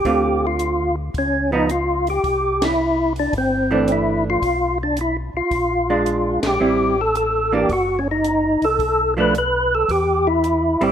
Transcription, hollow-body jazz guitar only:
0, 0, Header, 1, 2, 480
1, 0, Start_track
1, 0, Tempo, 546448
1, 45, Time_signature, 4, 2, 24, 8
1, 9591, End_track
2, 0, Start_track
2, 0, Title_t, "Hollow-body jazz guitar"
2, 0, Program_c, 0, 26
2, 45, Note_on_c, 0, 50, 52
2, 48, Note_on_c, 0, 57, 44
2, 54, Note_on_c, 0, 60, 54
2, 56, Note_on_c, 0, 65, 49
2, 787, Note_off_c, 0, 50, 0
2, 789, Note_off_c, 0, 57, 0
2, 792, Note_off_c, 0, 60, 0
2, 792, Note_off_c, 0, 65, 0
2, 1337, Note_on_c, 0, 53, 69
2, 1341, Note_on_c, 0, 59, 70
2, 1350, Note_on_c, 0, 63, 71
2, 1472, Note_off_c, 0, 53, 0
2, 1474, Note_off_c, 0, 59, 0
2, 1478, Note_off_c, 0, 63, 0
2, 3256, Note_on_c, 0, 52, 61
2, 3264, Note_on_c, 0, 57, 62
2, 3267, Note_on_c, 0, 62, 68
2, 3855, Note_off_c, 0, 52, 0
2, 3859, Note_off_c, 0, 57, 0
2, 3860, Note_off_c, 0, 62, 0
2, 5182, Note_on_c, 0, 56, 60
2, 5183, Note_on_c, 0, 62, 64
2, 5778, Note_off_c, 0, 56, 0
2, 5778, Note_off_c, 0, 62, 0
2, 5799, Note_on_c, 0, 55, 53
2, 5804, Note_on_c, 0, 60, 55
2, 5810, Note_on_c, 0, 64, 56
2, 6095, Note_off_c, 0, 55, 0
2, 6098, Note_off_c, 0, 60, 0
2, 6100, Note_off_c, 0, 64, 0
2, 6607, Note_on_c, 0, 52, 57
2, 6612, Note_on_c, 0, 58, 58
2, 6617, Note_on_c, 0, 62, 66
2, 6746, Note_off_c, 0, 52, 0
2, 6748, Note_off_c, 0, 58, 0
2, 6750, Note_off_c, 0, 62, 0
2, 8053, Note_on_c, 0, 53, 67
2, 8061, Note_on_c, 0, 57, 74
2, 8064, Note_on_c, 0, 62, 67
2, 8189, Note_off_c, 0, 53, 0
2, 8193, Note_off_c, 0, 57, 0
2, 8195, Note_off_c, 0, 62, 0
2, 9494, Note_on_c, 0, 55, 64
2, 9497, Note_on_c, 0, 60, 66
2, 9501, Note_on_c, 0, 64, 60
2, 9591, Note_off_c, 0, 55, 0
2, 9591, Note_off_c, 0, 60, 0
2, 9591, Note_off_c, 0, 64, 0
2, 9591, End_track
0, 0, End_of_file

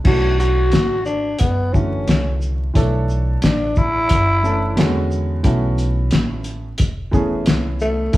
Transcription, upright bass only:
0, 0, Header, 1, 2, 480
1, 0, Start_track
1, 0, Tempo, 674157
1, 36, Time_signature, 4, 2, 24, 8
1, 5819, End_track
2, 0, Start_track
2, 0, Title_t, "Upright bass"
2, 0, Program_c, 0, 32
2, 37, Note_on_c, 0, 35, 96
2, 492, Note_off_c, 0, 35, 0
2, 517, Note_on_c, 0, 32, 83
2, 973, Note_off_c, 0, 32, 0
2, 1001, Note_on_c, 0, 30, 92
2, 1455, Note_off_c, 0, 30, 0
2, 1477, Note_on_c, 0, 36, 83
2, 1933, Note_off_c, 0, 36, 0
2, 1961, Note_on_c, 0, 35, 98
2, 2415, Note_off_c, 0, 35, 0
2, 2435, Note_on_c, 0, 33, 84
2, 2891, Note_off_c, 0, 33, 0
2, 2925, Note_on_c, 0, 30, 91
2, 3377, Note_off_c, 0, 30, 0
2, 3397, Note_on_c, 0, 40, 108
2, 3852, Note_off_c, 0, 40, 0
2, 3879, Note_on_c, 0, 35, 102
2, 4333, Note_off_c, 0, 35, 0
2, 4354, Note_on_c, 0, 33, 89
2, 4839, Note_off_c, 0, 33, 0
2, 4839, Note_on_c, 0, 28, 93
2, 5318, Note_off_c, 0, 28, 0
2, 5318, Note_on_c, 0, 36, 96
2, 5773, Note_off_c, 0, 36, 0
2, 5795, Note_on_c, 0, 35, 96
2, 5819, Note_off_c, 0, 35, 0
2, 5819, End_track
0, 0, End_of_file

